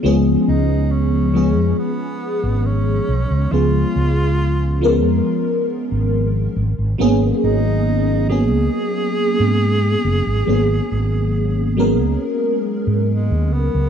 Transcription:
<<
  \new Staff \with { instrumentName = "Tenor saxophone" } { \time 4/4 \key gis \dorian \tempo 4 = 69 r8 dis'8 cis'4 b4 cis'4 | eis'2 r2 | r8 dis'4 gis'2~ gis'8~ | gis'2. gis8 b8 | }
  \new Staff \with { instrumentName = "FM electric piano" } { \time 4/4 \key gis \dorian <eis gis b cis' gis'>4. <eis gis b cis' gis'>2~ <eis gis b cis' gis'>8 | <eis gis b cis' gis'>4. <eis gis b cis' ais'>2 r8 | <fis ais b cis' gis'>4. <fis ais b cis' gis'>2~ <fis ais b cis' gis'>8 | <fis ais b cis' gis'>4. <fis gis b cis' ais'>2~ <fis gis b cis' ais'>8 | }
  \new Staff \with { instrumentName = "Fretless electric bass" } { \clef bass \time 4/4 \key gis \dorian cis,16 r16 cis,4~ cis,16 eis,16 r8. gis,,8. b,,16 cis,16 | cis,16 r16 cis,4~ cis,16 eis,16 r8. gis,,8. gis,,16 gis,,16 | gis,,16 r16 gis,,4~ gis,,16 cis,16 r8. gis,8. fis,,16 gis,,16 | gis,,16 r16 gis,,4~ gis,,16 cis,16 r8. gis,8 dis,16 cis,16 cis,16 | }
>>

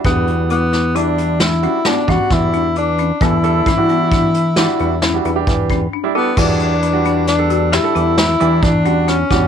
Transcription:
<<
  \new Staff \with { instrumentName = "Grand piano" } { \time 7/4 \key e \dorian \tempo 4 = 133 <g d' fis'>4~ <g d' fis'>16 r8. <g d' e'>4 r8 <g d' fis'>16 r16 <g d' fis'>16 r16 <g d' fis'>4~ <g d' fis'>16 r4 r16 | <g d' a'>16 r16 <g d' a'>8 r16 <g d' fis'>4 r8. <g d' fis'>8. r8 <g d' fis'>16 r16 <g d' g'>4 r8 <g d' e'>16 <g d' a'>16 r16 | <g d' fis'>8. r8 <g d' fis'>8. r16 <g d' a'>8. r16 <g d' a'>8. r8 <g d' e'>8. r16 <g d' fis'>8. r16 <g d' fis'>8 | }
  \new Staff \with { instrumentName = "Marimba" } { \time 7/4 \key e \dorian d'4 e'8 e'8 e'4 d'8 cis'8 b8 cis'4 d'8 e'8 cis'8 | b4 cis'8 b8 d'4 e'8 d'8 cis'8 d'4 cis'8 d'8 e'8 | e'4 d'8 d'4 fis'8 g'8 e'4 e'4 cis'8 d'8 e'8 | }
  \new Staff \with { instrumentName = "Tenor saxophone" } { \time 7/4 \key e \dorian b4 b4 d'4 e'4 d'8 fis'8 e'4 d'4 | e'1. r8 b8 | d'2 d'4 e'4 e'4 d'4 cis'4 | }
  \new Staff \with { instrumentName = "Analog synth bass" } { \clef bass \time 7/4 \key e \dorian e,1 r8 e,16 r16 e,2 | e,4 e2~ e8 e,4 e,8 e,4 r4 | e,2.~ e,8 e,4 e,8 e,4. e,8 | }
  \new DrumStaff \with { instrumentName = "Drums" } \drummode { \time 7/4 <hh bd>8 hh8 hh8 <hh sn>8 hh8 hh8 <hh sn>8 hh8 <hh sn>8 <hh bd>8 <hh bd sn>8 hh8 hh8 hh8 | <hh bd>8 hh8 <hh bd>8 hh8 <hh bd>8 hh8 <hh sn>8 hh8 <hh sn>8 hh8 <hh bd>8 <hh bd>8 r4 | <cymc bd>8 hh8 hh8 hh8 <hh sn>8 hh8 <hh sn>8 hh8 <hh sn>8 hh8 <hh bd>8 hh8 <hh sn>8 <hh bd sn>8 | }
>>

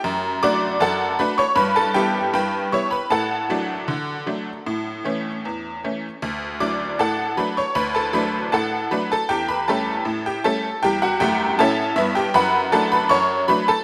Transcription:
<<
  \new Staff \with { instrumentName = "Honky-tonk piano" } { \time 2/4 \key d \major \tempo 4 = 78 r8 <d'' d'''>8 <a' fis'' a''>8 <b' b''>16 <cis'' cis'''>16 | <b' b''>16 <a' a''>16 <g' g''>8 <b' g'' b''>8 <cis'' cis'''>16 <b' b''>16 | <a' fis'' a''>2~ | <a' fis'' a''>4 r4 |
r8 <d'' d'''>8 <a' fis'' a''>8 <b' b''>16 <cis'' cis'''>16 | <b' b''>16 <a' a''>16 <b' b''>8 <a' fis'' a''>8 <b' b''>16 <a' a''>16 | <g' g''>16 <b' b''>16 <a' a''>8. <g' g''>16 <a' a''>8 | <g' g''>16 <fis' fis''>16 <g' g''>8 <a' e'' a''>8 <e' e''>16 <g' g''>16 |
<b' fis'' b''>8 <a' a''>16 <b' b''>16 <cis'' cis'''>8 <b' b''>16 <a' a''>16 | }
  \new Staff \with { instrumentName = "Honky-tonk piano" } { \time 2/4 \key d \major fis,8 <a d' fis'>8 fis,8 <a d' fis'>8 | g,8 <g b e'>8 g,8 <g b e'>8 | a,8 <fis a d'>8 d8 <fis a d'>8 | a,8 <e a cis'>8 e,8 <e a cis'>8 |
d,8 <fis a d'>8 a,8 <fis a d'>8 | d,8 <fis a d'>8 a,8 <fis a d'>8 | e,8 <g a cis'>8 a,8 <g a cis'>8 | <e, g>8 <fis, a>8 <a, cis'>8 <g, b>8 |
fis,8 <fis a d'>8 fis,8 <fis a d'>8 | }
>>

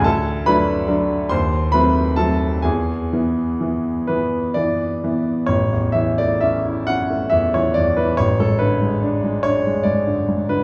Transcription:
<<
  \new Staff \with { instrumentName = "Grand piano" } { \time 12/8 \key a \major \tempo 4. = 45 << { a''8 b''4 bis''8 b''8 a''8 gis''4. b'8 d''4 | cis''8 e''16 d''16 e''8 fis''8 e''16 cis''16 d''16 b'16 cis''16 a'16 b'4 cis''8 d''8. b'16 | } \\ { a'8 b'4 bis'8 b'8 a'8 gis'2~ gis'8 r8 | r1. | } >> }
  \new Staff \with { instrumentName = "Grand piano" } { \clef bass \time 12/8 \key a \major d,8 <fis a d'>8 <fis a d'>8 dis,8 <fis a bis>8 <fis a bis>8 e,8 <e b>8 <e b>8 <e b>8 <e b>8 <e b>8 | a,,16 e,16 e16 a16 cis'16 e'16 cis'16 a16 e,16 e16 e,16 e16 a,,16 gis,16 d16 gis16 d'16 gis16 d'16 gis16 gis,16 d16 gis,16 d16 | }
>>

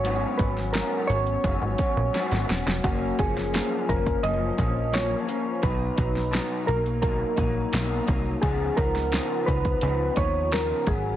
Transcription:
<<
  \new Staff \with { instrumentName = "Synth keys" } { \time 4/4 \key cis \mixolydian \tempo 4 = 86 cis''8 b'8 ais'8 cis''2 r8 | fis'8 gis'4 ais'8 dis''4 cis''4 | b'4. ais'8 ais'4. r8 | gis'8 ais'4 b'4 cis''8 ais'8 gis'8 | }
  \new Staff \with { instrumentName = "Clean electric guitar" } { \time 4/4 \key cis \mixolydian <gis, fis b cis'>8 <fis b cis'>8 <gis, fis b cis'>8 <fis b cis'>8 <gis, fis b cis'>8 <fis b cis'>8 <gis, fis b cis'>8 <fis b cis'>8 | <fis, ais cis'>8 <eis ais cis'>8 <fis, eis ais cis'>8 <eis ais cis'>8 <fis, eis ais cis'>8 <eis ais cis'>8 <fis, eis ais cis'>8 <eis ais cis'>8 | <b, fis dis'>8 <fis dis'>8 <b, fis dis'>8 <fis ais dis'>8 <b, fis ais dis'>8 <fis ais dis'>8 <b, fis ais dis'>8 <fis ais dis'>8 | <cis eis b dis'>8 <eis b dis'>8 <cis eis b dis'>8 <b dis'>8 <cis eis b dis'>8 <eis b dis'>8 <cis eis b dis'>8 <fis b cis'>8 | }
  \new Staff \with { instrumentName = "Analog synth bass" } { \clef bass \time 4/4 \key cis \mixolydian gis,,8 gis,,8. r16 gis,,8 fis,,16 gis,,16 r16 ais,,16 r16 gis,,16 e,,16 eis,,16 | fis,,8 fis,,8. r16 fis,,8 fis,,8 ais,,4 r8 | b,,8 b,,8. r16 b,,4 ais,,8 b,,8 bis,,8 | cis,8 cis,8. r16 cis,8 cis,8 dis,4 gis,,8 | }
  \new DrumStaff \with { instrumentName = "Drums" } \drummode { \time 4/4 hh8 <hh bd>16 sn16 <hh sn>8 hh16 hh16 <hh bd>8 <hh bd>8 <hh sn>16 <hh sn>16 <hh sn>16 sn16 | <hh bd>8 <hh bd>16 sn16 <hh sn>8 <hh bd>16 <hh bd>16 hh8 <hh bd>8 <hh sn>8 hh8 | <hh bd>8 <hh bd>16 sn16 <hh sn>8 hh16 hh16 <hh bd>8 <hh bd>8 <hh sn>8 <hh bd>8 | <hh bd>8 <hh bd>16 sn16 <hh sn>8 <hh bd>16 <hh bd>16 hh8 <hh bd>8 <hh sn>8 <hh bd>8 | }
>>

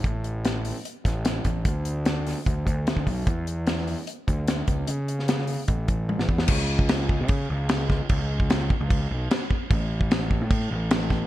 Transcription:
<<
  \new Staff \with { instrumentName = "Picked electric bass" } { \clef bass \time 4/4 \key a \major \tempo 4 = 149 a,,2 r8 a,,4 a,,8 | d,2 d,8 d,8. d,16 b,,8 | e,2 r8 d,4 cis,8 | cis2 a,,8 a,,8. a,,16 e,8 |
cis,4.~ cis,16 cis8. cis,4. | cis,4.~ cis,16 cis,8. b,,8 r4 | a,,4.~ a,,16 a,8. a,,4. | }
  \new DrumStaff \with { instrumentName = "Drums" } \drummode { \time 4/4 <hh bd>8 hh8 <hh sn>8 hho8 hh8 <hh bd sn>8 <hh sn>8 <hh bd>8 | <hh bd>8 hh8 <hh sn>8 <hho sn>8 <hh bd>8 <hh bd>8 <hh sn>16 bd16 <hho bd>8 | <hh bd>8 hh8 <hh sn>16 sn16 hho8 hh8 <hh bd>8 <hh sn>8 <hh bd>8 | hh8 hh16 sn16 <hh sn>16 sn16 hho8 <hh bd>8 <hh bd>8 tommh16 sn16 bd16 sn16 |
<cymc bd>8. bd16 <cymc sn>8 bd8 <cymc bd>4 <cymc sn>8 <bd sn>8 | <cymc bd>8. bd16 <cymc sn>8 bd8 <cymc bd>4 <cymc sn>8 bd8 | <cymc bd>8. bd16 <cymc sn>8 bd8 <cymc bd>4 <cymc sn>8 <bd sn>8 | }
>>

